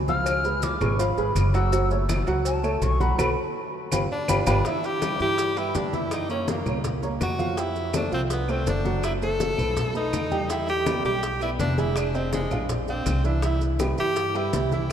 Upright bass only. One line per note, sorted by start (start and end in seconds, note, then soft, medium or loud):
0.00 0.75 C#2 medium
0.81 1.15 G#1 loud
1.17 1.35 G#1 medium
1.35 2.21 F#1 loud
2.27 2.78 C#2 medium
2.82 3.16 B1 loud
3.18 3.32 B1 loud
3.92 4.05 G1 medium
4.28 4.42 G1 loud
4.47 4.60 G1 loud
5.20 5.71 G2 medium
5.74 6.60 F#2 medium
6.66 7.17 C#2 medium
7.20 8.06 F2 loud
8.12 8.63 C2 medium
8.66 9.52 F#1 medium
9.58 10.09 B1 medium
10.13 10.99 E2 medium
11.04 11.55 B1 medium
11.59 12.45 F1 loud
12.51 13.02 A#1 medium
13.06 13.92 C2 loud
13.98 14.49 G2 medium
14.53 14.92 C2 medium